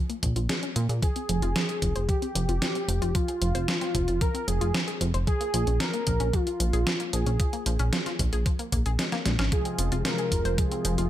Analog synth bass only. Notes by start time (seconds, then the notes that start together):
0.23 A#1
0.36 A#1
0.76 A#2
0.89 A#2
1.29 F1
1.42 F1
1.82 F1
1.95 F1
2.35 F1
2.49 F1
2.88 F1
3.02 F1
3.42 F1
3.55 F1
3.95 F1
4.08 F1
4.48 F1
4.61 F1
5.01 F1
5.14 F1
5.54 A#1
5.67 A#1
6.07 A#1
6.20 A#1
6.60 A#1
6.73 A#1
7.13 A#1
7.26 A#1
7.66 A#1
7.80 A#1
8.19 A#1
8.33 A#1
8.72 A#1
8.86 A#1
9.26 A#1
9.39 G#1
9.79 F1
9.92 F1
10.32 F1
10.45 F1
10.85 F1
10.98 F1